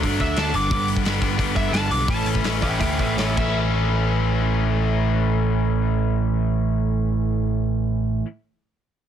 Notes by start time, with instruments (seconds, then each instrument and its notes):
0.03 picked electric bass G2, overdriven electric guitar D3 F#3 A3 D4, kick, open hi-hat
0.20 picked electric bass D2, lead electric guitar E5, kick, open hi-hat
0.37 picked electric bass D2, overdriven electric guitar D3 F#3 A3 D4, lead electric guitar A5, snare, open hi-hat
0.53 picked electric bass G1, overdriven electric guitar G2 D3 G3 B3 D4, lead electric guitar D6, open hi-hat
0.70 picked electric bass G1, overdriven electric guitar G2 D3 G3 B3 D4, lead electric guitar D6, kick, open hi-hat
0.88 open hi-hat
0.96 kick
1.03 picked electric bass G1, overdriven electric guitar G2 D3 G3 B3 D4, snare, open hi-hat
1.21 overdriven electric guitar G2 D3 G3 B3 D4, picked electric bass G2, kick, open hi-hat
1.37 overdriven electric guitar G2 D3 G3 B3 D4, picked electric bass G2, kick, open hi-hat
1.55 picked electric bass G1, lead electric guitar E5, kick, open hi-hat
1.72 picked electric bass G1, overdriven electric guitar G2 D3 G3 B3 D4, lead electric guitar A5, snare, open hi-hat
1.89 picked electric bass B1, overdriven electric guitar G2 D3 G3 B3 D4, lead electric guitar D6, open hi-hat
2.07 picked electric bass A1, overdriven electric guitar A2 E3 A3 C#4 E4, lead electric guitar A5, kick, open hi-hat
2.25 picked electric bass A1, open hi-hat
2.35 kick
2.43 picked electric bass A1, overdriven electric guitar A2 E3 A3 C#4 E4, snare, open hi-hat
2.62 overdriven electric guitar A2 E3 A3 C#4 E4, lead electric guitar E5 G5, kick, open hi-hat
2.80 picked electric bass D2, overdriven electric guitar A2 E3 A3 C#4 E4, lead electric guitar E5 G5, kick, open hi-hat
2.99 picked electric bass A1, lead electric guitar E5 G5, kick, open hi-hat
3.17 picked electric bass A1, overdriven electric guitar A2 E3 A3 C#4 E4, lead electric guitar C#5 E5, snare, open hi-hat
3.37 picked electric bass A1, overdriven electric guitar A2 E3 A3 C#4, lead electric guitar E5, kick, crash
3.42 overdriven electric guitar E4